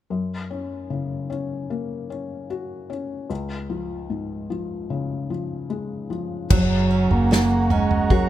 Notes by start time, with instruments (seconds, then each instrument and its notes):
0.10 felt piano F#2
0.51 felt piano C#4
0.90 felt piano C#3
1.30 felt piano C#4
1.70 felt piano A#3
2.10 felt piano C#4
2.50 felt piano F#4
2.90 felt piano C#4
3.30 felt piano C#2
3.70 felt piano F3
4.10 felt piano G#2
4.50 felt piano F3
4.90 felt piano C#3
5.30 felt piano F3
5.70 felt piano G#3
6.10 felt piano F3
6.50 fingered electric bass F#1, felt piano F#3, steel-string acoustic guitar F#3 G#4, bass clarinet F#3, analog synth pad G#4 F#5 A#5 C#6, kick, floor tom, crash
6.91 steel-string acoustic guitar C#4
7.11 fingered electric bass F#1, bass clarinet A#3, floor tom
7.31 steel-string acoustic guitar A#3, snare
7.70 bass clarinet G#3, steel-string acoustic guitar C#4, floor tom
7.91 floor tom
8.10 bass clarinet F#3, felt piano F#4 G#4 A#4, steel-string acoustic guitar G#4, kick, floor tom